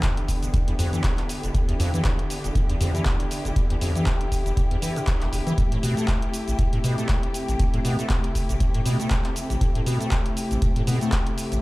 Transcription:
Already playing: string section D3 B3 E4 G4
0.03 kick, clap, closed hi-hat, shaker
0.17 closed hi-hat
0.28 kick, open hi-hat, shaker
0.43 acid bass E1, closed hi-hat, shaker
0.54 acid bass E2, kick, closed hi-hat, shaker
0.68 acid bass E2, closed hi-hat
0.79 acid bass F2, open hi-hat, shaker
0.93 acid bass E3, closed hi-hat, shaker
1.04 kick, clap, closed hi-hat, shaker
1.18 clap, closed hi-hat
1.29 open hi-hat, shaker
1.43 acid bass E1, closed hi-hat, shaker
1.54 acid bass E2, kick, closed hi-hat, shaker
1.69 acid bass E2, closed hi-hat
1.80 acid bass F2, open hi-hat, shaker
1.94 acid bass E3, closed hi-hat, shaker
2.05 kick, clap, closed hi-hat, shaker
2.19 closed hi-hat
2.30 open hi-hat, shaker
2.44 acid bass E1, closed hi-hat, shaker
2.55 acid bass E2, kick, closed hi-hat, shaker
2.69 acid bass E2, closed hi-hat
2.81 acid bass F2, open hi-hat, shaker
2.95 acid bass E3, closed hi-hat, shaker
3.05 kick, clap, closed hi-hat, shaker
3.20 closed hi-hat
3.31 open hi-hat, shaker
3.45 acid bass E1, closed hi-hat, shaker
3.56 acid bass E2, kick, closed hi-hat, shaker
3.70 acid bass E2, closed hi-hat
3.81 acid bass F2, open hi-hat, shaker
3.96 acid bass E3, closed hi-hat, shaker
4.06 kick, clap, closed hi-hat, shaker
4.21 closed hi-hat
4.32 kick, open hi-hat, shaker
4.46 acid bass E1, closed hi-hat, shaker
4.57 acid bass E2, kick, closed hi-hat, shaker
4.71 acid bass E2, closed hi-hat
4.82 acid bass E3, open hi-hat, shaker
4.96 acid bass B2, closed hi-hat, shaker
5.07 kick, clap, closed hi-hat, shaker
5.21 acid bass E1, clap, closed hi-hat
5.33 acid bass E1, open hi-hat, shaker
5.47 acid bass E3, closed hi-hat, shaker
5.58 acid bass A2, string section C3 A3, kick, closed hi-hat, shaker
5.72 acid bass A2, closed hi-hat
5.83 acid bass B2, open hi-hat, shaker
5.97 acid bass A3, closed hi-hat, shaker
6.08 kick, clap, closed hi-hat, shaker
6.22 closed hi-hat
6.34 open hi-hat, shaker
6.48 acid bass A1, closed hi-hat, shaker
6.59 acid bass A2, kick, closed hi-hat, shaker
6.73 acid bass A2, closed hi-hat
6.84 acid bass B2, open hi-hat, shaker
6.98 acid bass A3, closed hi-hat, shaker
7.09 kick, clap, closed hi-hat, shaker
7.23 closed hi-hat
7.34 open hi-hat, shaker
7.48 acid bass A1, closed hi-hat, shaker
7.60 acid bass A2, kick, closed hi-hat, shaker
7.74 acid bass A2, closed hi-hat
7.85 acid bass B2, open hi-hat, shaker
7.99 acid bass A3, closed hi-hat, shaker
8.10 kick, clap, closed hi-hat, shaker
8.24 closed hi-hat
8.35 kick, open hi-hat, shaker
8.49 acid bass A1, closed hi-hat, shaker
8.60 acid bass A2, kick, closed hi-hat, shaker
8.74 acid bass A2, closed hi-hat
8.86 acid bass B2, open hi-hat, shaker
9.00 acid bass A3, closed hi-hat, shaker
9.10 kick, clap, closed hi-hat, shaker
9.24 clap, closed hi-hat
9.36 open hi-hat, shaker
9.50 acid bass A1, closed hi-hat, shaker
9.61 acid bass A2, kick, closed hi-hat, shaker
9.75 acid bass A2, closed hi-hat
9.86 acid bass B2, open hi-hat, shaker
10.01 acid bass A3, closed hi-hat, shaker
10.11 kick, clap, closed hi-hat, shaker
10.26 closed hi-hat
10.37 open hi-hat, shaker
10.51 acid bass A1, closed hi-hat, shaker
10.62 acid bass A2, kick, closed hi-hat, shaker
10.76 acid bass A2, closed hi-hat
10.87 acid bass B2, open hi-hat, shaker
11.01 acid bass A3, closed hi-hat, shaker
11.12 kick, clap, closed hi-hat, shaker
11.27 closed hi-hat
11.38 open hi-hat, shaker
11.52 acid bass A1, closed hi-hat, shaker

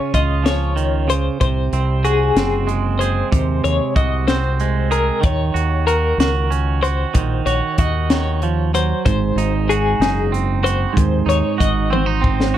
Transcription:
Already playing: clean electric guitar C#3 C#4 F4 C#5
0.14 fingered electric bass C#2, clean electric guitar F4 D#5, kick, closed hi-hat
0.44 clean electric guitar F3 C#5, snare, closed hi-hat
0.76 clean electric guitar D#3, closed hi-hat
1.08 clean electric guitar C#3 C5, closed hi-hat
1.40 fingered electric bass C2, clean electric guitar C3 C5, kick, closed hi-hat
1.72 fingered electric bass C2, clean electric guitar C4, closed hi-hat
2.05 clean electric guitar F#4 G#4, closed hi-hat
2.36 fingered electric bass F#1, clean electric guitar C4, snare, closed hi-hat
2.67 clean electric guitar G#3, closed hi-hat
2.99 clean electric guitar G#4 C5, closed hi-hat
3.32 fingered electric bass D#2, clean electric guitar C3, kick, closed hi-hat
3.64 fingered electric bass D#2, clean electric guitar C#5, closed hi-hat
3.96 fingered electric bass C2, clean electric guitar F#4 D#5, kick, closed hi-hat
4.28 clean electric guitar C4 C5, snare, closed hi-hat
4.60 clean electric guitar G#3, closed hi-hat
4.91 clean electric guitar G#4 A#4, closed hi-hat
5.21 fingered electric bass D#2, clean electric guitar D#3 C#5, kick, closed hi-hat
5.54 fingered electric bass D#2, clean electric guitar F#4, closed hi-hat
5.87 clean electric guitar F#4 A#4, closed hi-hat
6.18 fingered electric bass C#2, clean electric guitar F#4, snare, closed hi-hat
6.50 clean electric guitar C#4, closed hi-hat
6.83 clean electric guitar F#4 C5, closed hi-hat
7.14 fingered electric bass A#1, clean electric guitar D#3, kick, closed hi-hat
7.46 fingered electric bass A#1, clean electric guitar F#4 C#5, closed hi-hat
7.78 fingered electric bass D#2, clean electric guitar F#4 D#5, kick, closed hi-hat
8.10 clean electric guitar D#3 C#5, snare, closed hi-hat
8.42 clean electric guitar F3, closed hi-hat
8.74 clean electric guitar F#3 C5, closed hi-hat
9.06 fingered electric bass G#1, clean electric guitar G#2 C5, kick, closed hi-hat
9.35 fingered electric bass G#1, clean electric guitar D#4, closed hi-hat
9.69 clean electric guitar F#4 G#4, closed hi-hat
9.99 fingered electric bass F#1, clean electric guitar D#4, snare, closed hi-hat
10.32 clean electric guitar C4, closed hi-hat
10.63 clean electric guitar F#4 C5, closed hi-hat
10.93 clean electric guitar G#2, kick
10.97 fingered electric bass D#2, closed hi-hat
11.26 fingered electric bass D#2, clean electric guitar D#4 C#5, closed hi-hat
11.58 fingered electric bass G#1, clean electric guitar F#4 D#5, kick, closed hi-hat
11.90 clean electric guitar C4 C5, high tom
12.06 clean electric guitar D#4
12.21 clean electric guitar C4, kick
12.40 snare
12.54 clean electric guitar F#4

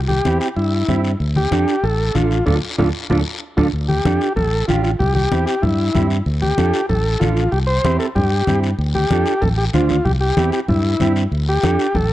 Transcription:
Already playing: fingered electric bass C2
0.08 transistor combo organ G4, high conga
0.25 fingered electric bass E2, clean electric guitar C4 E4 G4, high conga, short guiro
0.40 transistor combo organ G4, short guiro
0.56 fingered electric bass G2, transistor combo organ E4, high conga, long guiro
0.88 fingered electric bass G2, clean electric guitar C4 E4 G4, high conga, short guiro
1.04 short guiro
1.20 fingered electric bass D2, high conga, long guiro
1.36 transistor combo organ G4, high conga
1.51 fingered electric bass F2, clean electric guitar D4 F4 A4, high conga, short guiro
1.68 short guiro
1.83 fingered electric bass A1, transistor combo organ A4, high conga, long guiro
2.14 fingered electric bass A1, clean electric guitar D4 F4 A4, transistor combo organ F4, high conga, short guiro
2.31 short guiro
2.46 fingered electric bass D2, transistor combo organ D4 F4 A4, clean electric guitar D4 F4 A4, low conga, long guiro
2.78 fingered electric bass D2, transistor combo organ D4 F4 A4, clean electric guitar D4 F4 A4, low conga
3.10 fingered electric bass D2, transistor combo organ D4 F4 A4, clean electric guitar D4 F4 A4, low conga, long guiro
3.57 fingered electric bass D2, transistor combo organ D4 F4 A4, clean electric guitar D4 F4 A4, low conga, long guiro
3.73 fingered electric bass D2, high conga, long guiro
3.88 transistor combo organ G4, high conga
4.05 fingered electric bass F2, clean electric guitar D4 F4 A4, high conga, short guiro
4.21 short guiro
4.36 fingered electric bass A1, transistor combo organ A4, high conga, low conga, long guiro
4.68 fingered electric bass A1, clean electric guitar D4 F4 G4, transistor combo organ F4, high conga, short guiro
4.83 transistor combo organ F4, short guiro
4.99 fingered electric bass C2, transistor combo organ G4, high conga, low conga, long guiro
5.15 transistor combo organ G4, high conga
5.32 fingered electric bass E2, clean electric guitar C4 E4 G4, high conga, short guiro
5.46 transistor combo organ G4, short guiro
5.62 fingered electric bass G2, transistor combo organ E4, high conga, low conga, long guiro
5.94 fingered electric bass G2, clean electric guitar C4 E4 G4, high conga, low conga, short guiro
6.10 short guiro
6.26 fingered electric bass D2, high conga, long guiro
6.42 transistor combo organ G4, high conga
6.58 fingered electric bass F2, clean electric guitar D4 F4 A4, high conga, short guiro
6.74 short guiro
6.89 fingered electric bass A1, transistor combo organ A4, high conga, low conga, long guiro
7.20 fingered electric bass A1, clean electric guitar D4 F4 A4, transistor combo organ F4, high conga, short guiro
7.36 short guiro
7.52 fingered electric bass C2, transistor combo organ G4, high conga, long guiro
7.67 transistor combo organ C5
7.84 fingered electric bass E2, clean electric guitar C4 E4 G4, high conga, short guiro
7.99 transistor combo organ A4, short guiro
8.15 fingered electric bass G2, transistor combo organ G4, high conga, low conga, long guiro
8.47 fingered electric bass G2, clean electric guitar C4 E4 G4, high conga, short guiro
8.63 short guiro
8.78 fingered electric bass D2, high conga, long guiro
8.95 transistor combo organ G4, high conga
9.10 fingered electric bass F2, clean electric guitar D4 F4 A4, high conga, short guiro
9.26 short guiro
9.41 fingered electric bass A1, transistor combo organ A4, high conga, low conga, long guiro
9.58 transistor combo organ G4
9.73 fingered electric bass D2, clean electric guitar D4 F4 C5, transistor combo organ F4, high conga, short guiro
9.89 high conga, short guiro
10.05 fingered electric bass C2, transistor combo organ G4, high conga, low conga, long guiro
10.21 transistor combo organ G4
10.37 fingered electric bass E2, clean electric guitar C4 E4 G4, high conga, short guiro
10.52 transistor combo organ G4, short guiro
10.68 fingered electric bass G2, transistor combo organ E4, high conga, low conga, long guiro
11.00 fingered electric bass G2, clean electric guitar C4 E4 G4, high conga, short guiro
11.16 short guiro
11.31 fingered electric bass D2, high conga, long guiro
11.49 transistor combo organ G4
11.63 fingered electric bass F2, clean electric guitar D4 F4 A4, high conga, short guiro
11.79 short guiro
11.94 fingered electric bass A1, transistor combo organ A4, high conga, low conga, long guiro

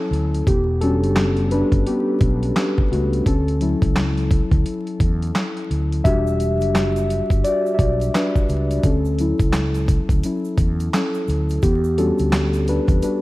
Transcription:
Already playing: synth keys F#3 C#4 E4 A4
0.11 fretless electric bass D2, closed hi-hat
0.34 closed hi-hat
0.47 fretless electric bass E1, synth keys B3 G4, kick, closed hi-hat
0.81 synth keys G3 C#4 D4 F#4 A4, closed hi-hat
1.03 fretless electric bass F#1, closed hi-hat
1.16 snare, clap, closed hi-hat
1.37 closed hi-hat
1.51 synth keys D4 B4, closed hi-hat
1.72 fretless electric bass G1, kick, closed hi-hat
1.87 synth keys B3 G4, closed hi-hat
2.21 fretless electric bass B1, kick, closed hi-hat
2.43 closed hi-hat
2.56 snare, clap, closed hi-hat
2.78 kick
2.92 fretless electric bass C#2, synth keys A3 F#4, closed hi-hat
3.13 closed hi-hat
3.26 fretless electric bass D2, synth keys C#4 A4, kick, closed hi-hat
3.48 closed hi-hat
3.61 synth keys F#3 C#4 E4, closed hi-hat
3.82 fretless electric bass C#2, kick, closed hi-hat
3.96 snare, clap, closed hi-hat
4.17 closed hi-hat
4.31 kick, closed hi-hat
4.51 fretless electric bass D2, kick, closed hi-hat
4.66 closed hi-hat
4.87 closed hi-hat
5.00 fretless electric bass E2, kick, closed hi-hat
5.22 closed hi-hat
5.35 snare, clap, closed hi-hat
5.57 closed hi-hat
5.71 fretless electric bass D2, closed hi-hat
5.92 closed hi-hat
6.04 fretless electric bass E1, synth keys G3 D4 F#4 G4 E5, kick, closed hi-hat, shaker
6.27 shaker
6.40 closed hi-hat, shaker
6.61 fretless electric bass F#1, closed hi-hat, shaker
6.75 snare, clap, closed hi-hat, shaker
6.96 closed hi-hat, shaker
7.10 closed hi-hat, shaker
7.30 fretless electric bass G1, kick, closed hi-hat, shaker
7.44 synth keys F#4 D5, closed hi-hat, shaker
7.66 shaker
7.74 synth keys E5
7.79 fretless electric bass B1, synth keys F#4 D5, kick, closed hi-hat, shaker
8.01 closed hi-hat, shaker
8.15 synth keys D4 B4, snare, clap, closed hi-hat, shaker
8.36 kick, shaker
8.49 fretless electric bass C#2, closed hi-hat, shaker
8.71 closed hi-hat, shaker
8.83 fretless electric bass D2, synth keys C#4 A4, kick, closed hi-hat, shaker
9.05 shaker
9.19 synth keys F#3 C#4 E4, closed hi-hat, shaker
9.39 fretless electric bass C#2, kick, closed hi-hat, shaker
9.53 snare, clap, closed hi-hat, shaker
9.74 closed hi-hat, shaker
9.88 kick, closed hi-hat, shaker
10.09 fretless electric bass D2, kick, closed hi-hat, shaker
10.24 synth keys F#3 C#4 E4, closed hi-hat, shaker
10.45 shaker
10.58 fretless electric bass E2, kick, closed hi-hat, shaker
10.80 closed hi-hat, shaker
10.93 synth keys C#4 A4, snare, clap, closed hi-hat, shaker
11.14 shaker
11.28 fretless electric bass D2, closed hi-hat, shaker
11.49 closed hi-hat, shaker
11.62 fretless electric bass E2, synth keys B3 G4, kick, closed hi-hat, shaker
11.84 shaker
11.98 synth keys G3 C#4 D4 F#4 A4, closed hi-hat, shaker
12.18 fretless electric bass D2, closed hi-hat, shaker
12.33 snare, clap, closed hi-hat, shaker
12.53 closed hi-hat, shaker
12.67 synth keys D4 B4, closed hi-hat, shaker
12.88 fretless electric bass E2, kick, closed hi-hat, shaker
13.02 synth keys G3 D4 F#4 B4, closed hi-hat, shaker

